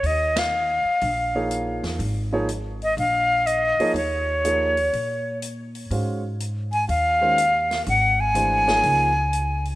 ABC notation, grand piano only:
X:1
M:4/4
L:1/8
Q:"Swing" 1/4=123
K:Ab
V:1 name="Grand piano"
z4 z [F,B,EAd]3 | z [F,B,EAd] z4 z [F,B,EAd] | z2 [F,B,EAd] z4 z | [A,D_Gcf] z4 [E,A,DGc] z2 |
z2 [_F,=A,=DGc] [=F,B,E_A_d]2 z3 |]